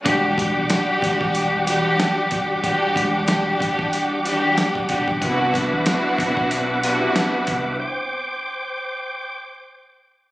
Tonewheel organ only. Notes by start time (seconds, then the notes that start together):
0.05 G3 F#5 D6
5.23 B4 E5
7.80 C5 G5 D6